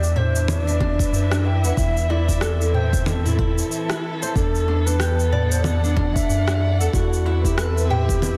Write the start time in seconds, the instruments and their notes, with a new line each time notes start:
Already playing: analog synth bass E2, string section E3 D4 E5, ney D5
0.03 shaker
0.12 string section E4, nylon-string guitar E5, darbuka ka, darbuka dum
0.17 string section B4, ney C5
0.36 shaker
0.48 ney C#5, darbuka ka, low conga, shaker
0.64 nylon-string guitar D4, ney D5
0.68 shaker
0.80 nylon-string guitar D4, kick, darbuka ka, low conga
0.99 kick, shaker
1.12 analog synth bass F#2, shaker
1.31 nylon-string guitar D4, cross-stick, shaker
1.45 ney G5, darbuka ka, darbuka tek
1.63 analog synth bass E2, nylon-string guitar B4, ney F#5, shaker
1.77 analog synth bass E2, nylon-string guitar E4, ney E5, kick, shaker
1.97 shaker
2.10 nylon-string guitar E4, ney D5, darbuka ka, darbuka tek
2.19 string section C4
2.29 nylon-string guitar E4, kick, shaker
2.41 nylon-string guitar A4, cross-stick, shaker
2.61 shaker
2.74 string section A4, ney C5, nylon-string guitar G5, darbuka ka, darbuka dum
2.93 kick, shaker
3.06 ney A4, low conga, shaker
3.25 nylon-string guitar E4, darbuka ka, darbuka dum, shaker
3.39 nylon-string guitar E4, kick, darbuka tek
3.58 shaker
3.72 shaker
3.89 nylon-string guitar E4, cross-stick, darbuka tek, shaker
4.22 nylon-string guitar C5, darbuka tek, shaker
4.35 analog synth bass E2, nylon-string guitar D4, ney A4, kick, shaker
4.55 shaker
4.67 string section B3, nylon-string guitar D4, darbuka ka, darbuka tek
4.86 nylon-string guitar D4, ney B4, shaker
5.00 nylon-string guitar G4, cross-stick, shaker
5.20 shaker
5.25 string section F#5
5.32 nylon-string guitar D5, darbuka ka, darbuka dum
5.51 ney C5, string section D5, shaker
5.63 ney D5, darbuka ka, low conga, shaker
5.84 nylon-string guitar D4, shaker
5.96 nylon-string guitar D4, kick, darbuka ka, low conga
6.14 ney E5, kick, shaker
6.29 analog synth bass F#2, shaker
6.48 nylon-string guitar D4, cross-stick, shaker
6.61 darbuka ka, darbuka tek
6.79 analog synth bass E2, nylon-string guitar A4, ney F#5, shaker
6.92 analog synth bass E2, nylon-string guitar E4, ney F#4, kick, shaker
7.13 shaker
7.25 nylon-string guitar E4, string section B4, darbuka ka, darbuka tek
7.30 string section C4
7.43 nylon-string guitar E4, ney G4, string section E5, kick, shaker
7.56 ney A4, nylon-string guitar B4, cross-stick, shaker
7.75 string section E4, shaker
7.89 ney G4, nylon-string guitar G5, darbuka ka, darbuka dum
8.09 kick, shaker
8.22 low conga, shaker